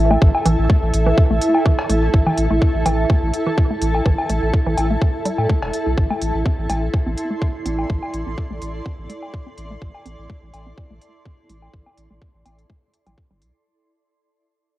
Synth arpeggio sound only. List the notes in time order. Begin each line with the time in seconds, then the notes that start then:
0.11 A3
0.46 E3
0.70 A3
1.06 E3
1.31 A3
1.66 E3
1.90 A3
2.26 E3
2.50 A3
2.86 E3
3.09 A3
3.46 E3
3.70 A3
4.06 E3
4.30 A3
4.66 E3
4.90 A3
5.26 G3
5.49 A3
5.87 E4
6.11 A3
6.46 C4
6.70 A3
7.07 C4
7.31 A3
7.66 C4
7.90 A3
8.27 C4
8.50 A3
8.86 C4
9.10 A3
9.46 C4
9.70 A3
10.06 C4
10.29 A3
10.66 C4
10.91 A3
11.26 C4
11.50 A3
11.87 C4
12.11 A3
12.46 C4
12.70 A3
13.07 G3
13.31 G3